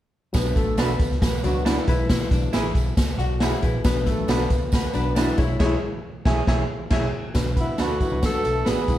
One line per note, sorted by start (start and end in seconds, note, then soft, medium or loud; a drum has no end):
0.33 0.51 B1 medium
0.33 0.99 F#3 medium
0.33 0.53 B3 medium
0.33 0.99 D4 medium
0.33 0.99 B4 medium
0.33 kick medium
0.33 snare medium
0.33 closed hi-hat medium
0.33 tambourine loud
0.54 0.78 A1 loud
0.54 0.96 A3 medium
0.54 0.75 A3 medium
0.54 0.96 A4 medium
0.54 kick medium
0.54 closed hi-hat medium
0.54 tambourine medium
0.77 0.95 B1 medium
0.77 1.20 B3 medium
0.77 0.88 D4 medium
0.77 0.88 F#4 medium
0.77 0.89 B4 medium
0.77 snare loud
0.77 closed hi-hat medium
0.77 tambourine medium
0.99 1.22 C#2 medium
0.99 kick medium
0.99 closed hi-hat medium
0.99 tambourine soft
1.12 snare soft
1.22 1.39 B1 medium
1.22 1.39 B3 medium
1.22 1.40 B4 medium
1.22 kick loud
1.22 snare loud
1.22 closed hi-hat medium
1.22 tambourine loud
1.43 1.78 C#2 medium
1.43 1.61 F#3 medium
1.43 1.87 F#3 medium
1.43 1.49 C#4 medium
1.43 1.62 D4 medium
1.43 1.61 F#4 loud
1.43 1.88 B4 medium
1.43 closed hi-hat medium
1.43 tambourine medium
1.49 1.90 D4 medium
1.65 1.96 E3 medium
1.65 1.75 D4 medium
1.65 1.84 D4 medium
1.65 1.96 E4 medium
1.65 1.76 F#4 medium
1.65 1.76 B4 medium
1.65 snare loud
1.65 closed hi-hat medium
1.65 tambourine medium
1.87 2.22 B1 medium
1.87 2.57 G#3 medium
1.87 2.06 E4 medium
1.87 2.58 E4 medium
1.87 2.58 B4 medium
1.87 kick medium
1.87 closed hi-hat medium
1.87 tambourine soft
2.09 2.28 E4 medium
2.09 kick medium
2.09 snare loud
2.09 closed hi-hat medium
2.09 tambourine medium
2.31 2.48 B1 medium
2.31 2.50 D4 medium
2.31 kick medium
2.31 closed hi-hat medium
2.31 tambourine medium
2.53 2.71 A1 medium
2.53 2.63 E4 medium
2.53 2.94 E4 medium
2.53 2.63 G#4 medium
2.53 2.64 B4 medium
2.53 snare loud
2.53 closed hi-hat medium
2.53 tambourine medium
2.75 2.92 B1 medium
2.75 kick medium
2.75 closed hi-hat medium
2.75 tambourine soft
2.97 3.14 C#2 medium
2.97 kick medium
2.97 snare loud
2.97 closed hi-hat medium
2.97 tambourine medium
3.18 3.52 B1 medium
3.18 3.37 F#4 medium
3.18 3.40 D5 soft
3.18 3.40 F#5 medium
3.18 closed hi-hat medium
3.18 tambourine medium
3.40 3.51 E4 medium
3.40 3.59 F#4 medium
3.40 3.51 G#4 medium
3.40 3.52 B4 medium
3.40 3.62 C#5 medium
3.40 3.62 E5 medium
3.40 snare loud
3.40 closed hi-hat medium
3.40 tambourine medium
3.62 3.80 A#1 medium
3.62 3.81 E4 medium
3.62 4.05 G#4 medium
3.62 3.85 B4 medium
3.62 kick medium
3.62 closed hi-hat medium
3.62 tambourine soft
3.84 4.07 B1 loud
3.84 4.50 F#3 medium
3.84 4.03 B3 medium
3.84 4.50 D4 medium
3.84 4.50 B4 medium
3.84 kick loud
3.84 snare loud
3.84 closed hi-hat medium
3.84 tambourine loud
4.06 4.24 A1 medium
4.06 4.25 A3 medium
4.06 4.48 A3 medium
4.06 4.48 A4 medium
4.06 kick medium
4.06 closed hi-hat medium
4.06 tambourine medium
4.28 4.45 B1 medium
4.28 4.69 B3 medium
4.28 4.39 D4 medium
4.28 4.39 F#4 medium
4.28 4.39 B4 medium
4.28 snare loud
4.28 closed hi-hat medium
4.28 tambourine medium
4.50 4.85 C#2 medium
4.50 kick medium
4.50 closed hi-hat medium
4.50 tambourine soft
4.72 4.90 B3 medium
4.72 4.91 B4 loud
4.72 kick medium
4.72 snare loud
4.72 closed hi-hat medium
4.72 tambourine medium
4.93 5.29 B1 medium
4.93 5.38 F#3 medium
4.93 5.12 B3 loud
4.93 5.13 D4 medium
4.93 5.37 D4 medium
4.93 5.11 B4 loud
4.93 5.39 B4 medium
4.93 closed hi-hat medium
4.93 tambourine medium
5.15 5.48 E3 medium
5.15 5.34 D4 medium
5.15 5.26 D4 medium
5.15 5.47 E4 medium
5.15 5.27 F#4 medium
5.15 5.27 B4 loud
5.15 snare loud
5.15 closed hi-hat medium
5.15 tambourine medium
5.38 5.55 B1 loud
5.38 5.59 G#3 medium
5.38 5.43 D4 medium
5.38 5.56 E4 medium
5.38 5.60 C#5 loud
5.38 kick medium
5.38 closed hi-hat medium
5.38 tambourine medium
5.44 5.63 E4 medium
5.60 5.75 B1 loud
5.60 5.75 G#3 medium
5.60 5.75 E4 medium
5.60 5.75 G#4 medium
5.60 5.75 C#5 medium
5.60 5.76 C#5 medium
5.60 kick loud
5.60 snare loud
5.60 crash medium
5.66 5.78 E4 loud
6.25 6.41 B1 medium
6.25 6.41 E4 medium
6.25 6.41 G#4 medium
6.25 6.41 C#5 medium
6.25 6.41 E5 medium
6.25 6.41 G#5 medium
6.25 kick medium
6.25 snare loud
6.47 6.62 B1 medium
6.47 6.63 E4 medium
6.47 6.63 G#4 medium
6.47 6.63 C#5 medium
6.47 6.63 E5 medium
6.47 6.63 G#5 loud
6.47 kick medium
6.47 snare medium
6.90 7.06 B1 medium
6.90 7.06 E4 loud
6.90 7.06 G#4 medium
6.90 7.07 C#5 loud
6.90 7.07 E5 loud
6.90 7.07 G#5 loud
6.90 kick loud
6.90 snare loud
6.90 crash medium
7.34 7.69 B1 medium
7.34 7.83 F#3 medium
7.34 7.84 D4 medium
7.34 7.84 B4 medium
7.34 kick medium
7.34 snare medium
7.34 closed hi-hat medium
7.34 tambourine medium
7.56 7.74 B3 medium
7.56 7.74 B4 medium
7.56 kick medium
7.56 closed hi-hat medium
7.56 tambourine soft
7.60 7.84 E4 medium
7.78 8.04 D2 medium
7.78 7.96 A3 medium
7.78 7.89 D4 medium
7.78 7.89 F#4 medium
7.78 7.96 A4 medium
7.78 7.90 B4 medium
7.78 snare medium
7.78 closed hi-hat medium
7.78 tambourine medium
7.83 8.25 F#4 medium
8.00 8.18 E3 medium
8.00 8.09 F#3 medium
8.00 8.10 D4 medium
8.00 8.18 E4 medium
8.00 8.10 B4 medium
8.00 kick medium
8.00 closed hi-hat medium
8.00 tambourine soft
8.11 8.20 C#2 medium
8.11 8.77 F#3 medium
8.11 8.77 D4 medium
8.11 8.77 B4 medium
8.21 8.40 F#3 medium
8.21 8.39 F#4 medium
8.21 kick medium
8.21 snare loud
8.21 closed hi-hat medium
8.21 tambourine medium
8.25 8.70 A4 medium
8.34 muted fingered electric bass stroke soft
8.43 8.62 B1 medium
8.43 8.62 A3 medium
8.43 8.61 A4 medium
8.43 closed hi-hat medium
8.43 tambourine medium
8.65 8.75 A1 medium
8.65 8.97 B3 medium
8.65 8.77 D4 medium
8.65 8.77 F#4 medium
8.65 8.97 B4 loud
8.65 8.77 B4 medium
8.65 snare loud
8.65 closed hi-hat medium
8.65 tambourine medium
8.69 8.98 G#4 loud
8.88 8.97 B1 loud
8.88 8.98 G#3 medium
8.88 8.98 E4 medium
8.88 8.98 B4 medium
8.88 kick medium
8.88 closed hi-hat medium
8.88 tambourine soft